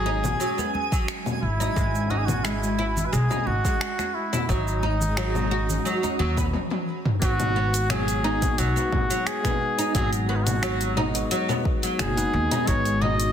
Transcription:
Already playing: G#1 F#3 G#3 C#4 F#4 G#4 G#5
0.06 D#4, high bongo
0.24 low conga, cabasa
0.40 F#3, cabasa
0.58 B3, high conga, cabasa
0.74 high bongo, high conga
0.92 F#3, kick, cabasa
1.08 finger snap, cabasa
1.26 high bongo, high conga, low conga, cabasa
1.42 G#1 E4
1.60 D#4, high conga, cabasa
1.76 G#1 G#3, kick, cabasa
1.95 cabasa
2.10 D#4 F#4, high conga
2.18 G#4
2.25 F#4, low conga, cabasa
2.44 G#3 E4, finger snap, cabasa
2.63 cabasa
2.79 E4, high bongo
2.97 low conga, cabasa
3.06 B4
3.13 B1 G#3 G#4, cabasa
3.31 D#4, high bongo, low conga, cabasa
3.47 G#1 F#4, high conga
3.65 G#3, kick, cabasa
3.81 finger snap, cabasa
3.99 finger snap, high bongo, high conga, cabasa
4.14 E4
4.33 E4, low conga, cabasa
4.49 G#1 F#3 D#4, kick, cabasa
4.68 cabasa
4.83 D#4, high conga
4.95 G#3
5.01 high bongo, low conga, cabasa
5.17 F#3, finger snap, cabasa
5.35 low conga, cabasa
5.47 C#4
5.51 F#4, high bongo
5.70 F#4, low conga, cabasa
5.85 F#3, cabasa
6.03 D#4, high conga, cabasa
6.19 D#2 F#3, high bongo, high conga
6.37 B4, kick, low conga, cabasa
6.54 high tom
6.71 high tom
7.05 mid tom
7.20 G#1 F#3 G#3 B3 D#4 F#4, kick, closed hi-hat, cabasa
7.40 closed hi-hat, low conga, cabasa
7.56 B3
7.74 closed hi-hat, cabasa
7.90 F#3 G#4, finger snap, closed hi-hat, low conga, cabasa
8.08 closed hi-hat, cabasa
8.23 G#3 B3 D#4 F#4
8.41 G#3 B3 D#4 F#4, kick, closed hi-hat, low conga, cabasa
8.58 B1 F#3 F#4, closed hi-hat, cabasa
8.76 B3, cabasa
8.92 G#1, kick, low conga
9.10 F#3, closed hi-hat, cabasa
9.27 G#4, finger snap, closed hi-hat, cabasa
9.43 G#3 B3 D#4 B4, finger snap, kick, closed hi-hat, low conga, cabasa
9.78 D#4, closed hi-hat, cabasa
9.93 G#1 F#3 G#3 B3 D#4 F#4 G#4, kick, closed hi-hat, low conga, cabasa
10.13 closed hi-hat, cabasa
10.29 B3 F#4
10.36 D#4
10.44 F#4, closed hi-hat, low conga, cabasa
10.63 F#3, finger snap, closed hi-hat, cabasa
10.81 closed hi-hat, cabasa
10.96 G#3 B3 D#4 F#4, low conga
11.14 G#3 B3 D#4 F#4, closed hi-hat, cabasa
11.31 F#3, closed hi-hat, cabasa
11.49 B3, low conga, cabasa
11.65 kick
11.83 F#3, closed hi-hat, cabasa
11.99 F#1 G#4, finger snap, closed hi-hat, low conga, cabasa
12.16 G#3 B3 D#4 B4, closed hi-hat, cabasa
12.33 D#2
12.51 D#4, closed hi-hat, low conga, cabasa
12.65 G#1 G#3 B3 D#4 F#4 C#5, kick, closed hi-hat, cabasa
12.85 closed hi-hat, cabasa
13.02 D#4 D#5, low conga
13.20 closed hi-hat, cabasa

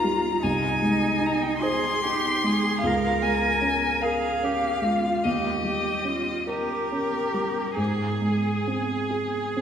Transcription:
Already playing: C#2 G3 D#4 F4 A#4 A#5
0.04 G3
0.43 C2 D#4 G#5
0.82 G#3
1.21 D#4
1.26 A#5
1.33 G#5
1.42 G5
1.49 G#5
1.57 C6
1.62 G#4 C5
2.04 D#4 G4
2.44 G#3 G#4
2.81 C#2 F5
2.86 A#4
3.22 G#3 G#5
3.61 C#4
4.01 G#4 A#4 F5
4.43 C#4 G4
4.82 G#3
4.86 F4
5.24 D#2 G4 D#5
5.64 G3 G4
6.04 C#4 F4
6.47 G4 A#4
6.92 C#4
7.34 G3
7.77 G#2 G#4
8.21 G#3
8.67 C4
9.11 G#4
9.57 C4

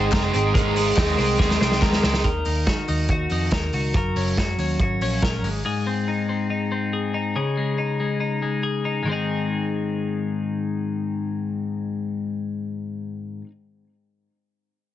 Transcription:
Already playing: G#3 C4 D#4 G#4 C5
0.12 G#3 C4 D#4 G#4 A#4 C5, kick, snare, clap, hi-hat pedal, open hi-hat
0.23 C5
0.32 G#1 C4 D#4 G#4 C5, hi-hat pedal, open hi-hat
0.54 G#1 G#3 A#3 D#4 G#4 A#4 C5, kick, hi-hat pedal, open hi-hat
0.75 C4 D#4 G#4 C5, hi-hat pedal, open hi-hat
0.96 D#2 G#3 A#3 D#4 G#4 C5, kick, snare, clap, hi-hat pedal, open hi-hat
1.17 C2 C4 D#4 G#4 C5, hi-hat pedal, open hi-hat
1.38 D#2 A#3 D#4 G#4 C5, kick, snare
1.50 A#4, snare
1.59 C2 C4 D#4 G#4 C5, snare
1.72 snare
1.81 D#2 G#3 A#3 D#4 G#4 A#4 C5, kick, snare, clap
1.93 snare
2.02 C#2 C4 D#4 G#4 C5, snare
2.14 snare
2.24 D#2 D#3 A#4, kick, closed hi-hat
2.45 D#2 D#4, open hi-hat
2.67 D#3 F#4, kick, snare, closed hi-hat
2.88 D#2 D#4, open hi-hat
3.09 D#2 F#4, kick, closed hi-hat
3.30 F2 D#4, open hi-hat
3.51 D#2 A#4, kick, snare, closed hi-hat
3.73 C#2 F#4, open hi-hat
3.94 F#1 F#3 A#4, kick, closed hi-hat
4.16 F#1 C#4, open hi-hat
4.37 F#2 F#4, kick, snare, closed hi-hat
4.58 D#2 C#4, open hi-hat
4.79 G#1 F#4, kick, closed hi-hat
5.01 A#1 C#4, open hi-hat
5.22 A#1 A#4, kick, snare, closed hi-hat
5.43 G#1 G#2, open hi-hat
5.65 G#2 G#4
5.87 C4
6.08 D#4
6.29 C4
6.50 D#4
6.72 C4
6.93 G#4
7.14 D#4
7.36 C#3 G#4
7.57 G#3
7.78 D#4
8.00 G#3
8.20 D#4
8.42 G#3
8.63 G#4
8.85 D#4
9.03 G#2 D#3
9.08 G#3 C4 D#4
9.13 G#4

